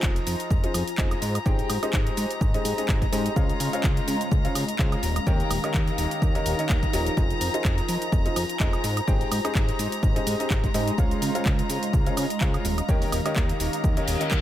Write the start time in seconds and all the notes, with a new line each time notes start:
Already playing: F3 D#4 F4 G#4 C5 D#5 A#5
0.03 F1, kick, clap, shaker
0.16 closed hi-hat, shaker
0.22 C5
0.27 F2, open hi-hat, shaker
0.31 G#5
0.40 closed hi-hat, shaker
0.51 F1, kick, shaker
0.64 F3 D#4 F4 G#4 C5 D#5, closed hi-hat, shaker
0.74 F2, open hi-hat, high woodblock, shaker
0.87 closed hi-hat, shaker
0.98 F1 G#3 D#4 F4 G#4 C5 D#5, kick, clap, shaker
1.11 closed hi-hat, high woodblock, shaker
1.22 G#2 G#3, open hi-hat, shaker
1.32 D#5, closed hi-hat, high woodblock, shaker
1.46 G#1 G#3 D#4 G4 G#4 C5 G5, kick, shaker
1.58 A#5, closed hi-hat, shaker
1.70 G#2, open hi-hat, high woodblock, shaker
1.83 G#3 D#4 G4 G#4 C5 D#5, closed hi-hat, high woodblock, shaker
1.93 G#1, kick, clap, shaker
2.07 closed hi-hat, shaker
2.17 G#2 C6, open hi-hat, shaker
2.31 closed hi-hat, shaker
2.41 G#1, kick, shaker
2.54 G#3 D#4 G4 G#4 C5 D#5, closed hi-hat, shaker
2.65 G#2, open hi-hat, shaker
2.78 G#3 D#4 G4 G#4 C5 D#5, closed hi-hat, shaker
2.89 G#1, kick, clap, shaker
3.02 kick, closed hi-hat, shaker
3.12 G#2 D#4 G4 G#4 C5 D#5, open hi-hat, shaker
3.26 closed hi-hat, shaker
3.36 C#2 C#3 C#4 F4 G#4 C5 C#5 F5, kick, shaker
3.49 closed hi-hat, shaker
3.60 C#3, open hi-hat, shaker
3.73 C#3 F4 G#4 C5 C#5 F5, closed hi-hat, shaker
3.84 C#2, kick, clap, shaker
3.97 closed hi-hat, shaker
4.08 C#3 F5, open hi-hat, shaker
4.21 closed hi-hat, shaker
4.31 C#2, kick, shaker
4.45 C#3 F4 G#4 C5 C#5 F5, closed hi-hat, shaker
4.55 C#3, open hi-hat, high woodblock, shaker
4.68 closed hi-hat, shaker
4.79 C#2 F4 G#4 C5 C#5 F5, kick, clap, shaker
4.92 closed hi-hat, high woodblock, shaker
5.03 D#1 D#4, open hi-hat, shaker
5.16 closed hi-hat, high woodblock, shaker
5.26 D#2 D#3 D#4 G4 A#4 C#5 G5, kick, shaker
5.40 closed hi-hat, shaker
5.50 D#1 A#4, open hi-hat, high woodblock, shaker
5.64 D#3 D#4 G4 A#4 C#5 D#5, closed hi-hat, high woodblock, shaker
5.74 D#2, kick, clap, shaker
5.88 closed hi-hat, shaker
5.98 D#1, open hi-hat, shaker
6.11 closed hi-hat, shaker
6.22 D#2, kick, shaker
6.35 D#3 D#4 G4 A#4 C#5 D#5, closed hi-hat, shaker
6.46 D#1, open hi-hat, shaker
6.59 D#3 D#4 G4 A#4 C#5 D#5, closed hi-hat, shaker
6.69 D#2, kick, clap, shaker
6.83 kick, closed hi-hat, shaker
6.93 D#1 F3 D#4 G4 A#4 C#5 D#5, open hi-hat, shaker
7.06 closed hi-hat, shaker
7.17 F1 F3 D#4 F4 G#4 C5 D#5, kick, shaker
7.30 closed hi-hat, shaker
7.41 F2, open hi-hat, shaker
7.46 C5
7.54 F3 D#4 F4 G#4 C5 D#5, closed hi-hat, shaker
7.65 F1 G#5, kick, clap, shaker
7.78 closed hi-hat, shaker
7.89 F2, open hi-hat, shaker
8.02 closed hi-hat, shaker
8.12 F1, kick, shaker
8.26 F3 D#4 F4 G#4 C5 D#5, closed hi-hat, shaker
8.36 F2, open hi-hat, high woodblock, shaker
8.49 closed hi-hat, shaker
8.60 F1 G#3 D#4 F4 G#4 C5 D#5, kick, clap, shaker
8.73 closed hi-hat, high woodblock, shaker
8.84 G#2 G#3, open hi-hat, shaker
8.97 closed hi-hat, high woodblock, shaker
9.07 G#1 G#3 D#4 G4 G#4 C5 G5, kick, shaker
9.21 closed hi-hat, shaker
9.31 G#2, open hi-hat, high woodblock, shaker
9.40 D#5 A#5
9.44 G#3 D#4 G4 G#4 C5 D#5, closed hi-hat, high woodblock, shaker
9.55 G#1, kick, clap, shaker
9.69 C6, closed hi-hat, shaker
9.79 G#2, open hi-hat, shaker
9.92 closed hi-hat, shaker
10.03 G#1, kick, shaker
10.16 G#3 D#4 G4 G#4 C5 D#5, closed hi-hat, shaker
10.27 G#2, open hi-hat, shaker
10.40 G#3 D#4 G4 G#4 C5 D#5, closed hi-hat, shaker
10.50 G#1, kick, clap, shaker
10.64 kick, closed hi-hat, shaker
10.74 G#2 D#4 G4 G#4 C5 D#5, open hi-hat, shaker
10.88 closed hi-hat, shaker
10.98 C#2 C#3 C#4 F4 G#4 C5 C#5 F5, kick, shaker
11.11 closed hi-hat, shaker
11.22 C#3, open hi-hat, shaker
11.35 C#3 F4 G#4 C5 C#5 F5, closed hi-hat, shaker
11.45 C#2, kick, clap, shaker
11.59 closed hi-hat, shaker
11.70 C#3 F5, open hi-hat, shaker
11.83 closed hi-hat, shaker
11.93 C#2, kick, shaker
12.06 C#3 F4 G#4 C5 C#5 F5, closed hi-hat, shaker
12.17 C#3, open hi-hat, high woodblock, shaker
12.30 closed hi-hat, shaker
12.41 C#2 F4 G#4 C5 C#5 F5, kick, clap, shaker
12.54 closed hi-hat, high woodblock, shaker
12.65 D#1 D#4, open hi-hat, shaker
12.78 closed hi-hat, high woodblock, shaker
12.89 D#2 D#3 D#4 G4 A#4 C#5 G5, kick, shaker
13.02 open hi-hat, shaker
13.12 D#1, open hi-hat, high woodblock, shaker
13.17 A#4
13.26 D#3 D#4 G4 A#4 C#5 D#5, closed hi-hat, high woodblock, shaker
13.36 D#2, kick, clap, shaker
13.49 closed hi-hat, shaker
13.60 D#1, open hi-hat, shaker
13.73 closed hi-hat, shaker
13.84 D#2, kick, reverse cymbal, shaker
13.97 D#3 D#4 G4 A#4 C#5 D#5, closed hi-hat, shaker
14.08 D#1, open hi-hat, shaker
14.21 D#3 D#4 G4 A#4 C#5 D#5, closed hi-hat, shaker
14.31 D#2, kick, clap, shaker